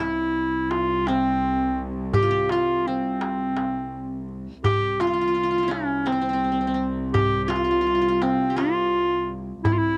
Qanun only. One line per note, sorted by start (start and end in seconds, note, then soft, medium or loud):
0.00 1.14 C#4 soft
0.00 1.39 E4 medium
1.08 2.68 C4 medium
2.14 2.30 G4 medium
2.22 2.52 F4 medium
2.31 3.56 G4 medium
2.52 3.87 F4 medium
2.88 4.48 C4 medium
4.64 5.90 G4 medium
5.01 5.07 F4 medium
5.07 5.13 F4 soft
5.14 5.21 F4 medium
5.21 5.27 F4 soft
5.28 5.34 F4 medium
5.35 5.43 F4 soft
5.43 5.50 F4 medium
5.51 5.58 F4 soft
5.58 5.69 F4 medium
5.63 7.03 E4 soft
5.68 6.12 C#4 medium
6.06 6.12 C4 medium
6.12 6.21 C4 soft
6.22 6.29 C4 soft
6.29 6.33 C4 soft
6.33 6.44 C4 soft
6.44 6.51 C4 soft
6.52 6.60 C4 soft
6.61 6.67 C4 soft
6.67 6.74 C4 soft
6.74 8.22 C4 soft
7.14 8.39 G4 medium
7.48 7.55 F4 medium
7.56 7.64 F4 soft
7.64 7.70 F4 medium
7.71 7.81 F4 soft
7.81 7.86 F4 medium
7.87 7.94 F4 soft
7.95 8.01 F4 medium
8.02 8.08 F4 medium
8.08 8.56 F4 medium
8.22 9.82 C4 medium
8.50 9.75 G4 soft
8.57 9.71 F4 medium
9.65 9.98 E4 medium